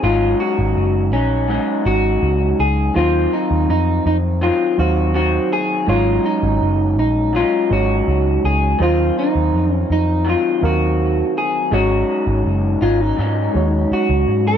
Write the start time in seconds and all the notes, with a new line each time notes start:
0.03 G#1 G#2 F#3 C#4 D#4 F4
0.40 F#4
0.59 G#1
0.76 F#1
1.13 A#1 F#3 C#4 D#4
1.48 G#2 F#3 C#4
1.53 D#4
1.86 G#1 F#4
2.23 C#2
2.59 C#2 G#4
2.94 D#2 D#3 F#3 C4 D#4 F4 C5
2.99 F4
3.33 D#4
3.51 D#2
3.69 F2 D#4
4.06 F2 D#4
4.41 D#3 F#3 C4 F4
4.78 D#2 F#3 D#4 F#4 C5 F5
5.14 D#3 F#3 C4 F#4
5.53 G#4
5.87 G#1 G#2 F#3 G#3 C#4 D#4 F4 C#5
5.92 D#4
6.26 D#4
6.43 G#1
6.62 F#1
6.98 A#1 D#4
7.33 G#2 F#3 C#4 F4
7.38 D#4
7.70 G#1 G#3 D#4 F#4 C#5
8.08 C#2
8.44 C#2 G#4
8.79 D#2 D#3 F#3 C4 D#4 F4 C5
8.84 F4
9.19 D#4
9.36 D#2
9.54 F2
9.74 C#4
9.90 F2 D#4
10.25 D#3 F#3 C4
10.29 F4
10.61 D#2 F#3 D#4 F#4 A#4 F5
11.38 G#4
11.71 G#1 G#2 F#3 G#3 C#4 D#4 F#4 C#5
12.27 G#1
12.46 F#1
12.81 G#1 F#3 C#4 D#4 F4
13.01 D#4
13.17 G#2 F#3 C#4
13.22 D#4
13.54 D#2 G#3 D#4 F#4 C#5
13.91 F#4, muted picked electric bass stroke
14.09 C#2
14.28 G#2
14.47 A#4